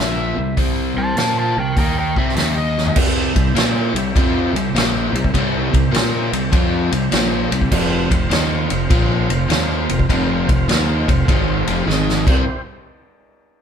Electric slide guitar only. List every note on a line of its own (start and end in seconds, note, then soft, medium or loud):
0.00 0.55 E5 medium
0.98 1.17 C5 medium
0.98 1.16 A5 medium
1.18 1.36 C5 medium
1.18 1.37 A5 medium
1.39 1.56 C5 medium
1.39 1.57 A5 medium
1.59 1.76 A#4 medium
1.59 1.77 G5 medium
1.79 1.96 A#4 medium
1.79 1.97 G5 medium
1.99 2.16 A#4 medium
1.99 2.17 G5 medium
2.17 2.36 G4 medium
2.17 2.36 E5 medium
2.37 2.55 G4 medium
2.37 2.56 E5 medium
2.58 2.95 D#5 medium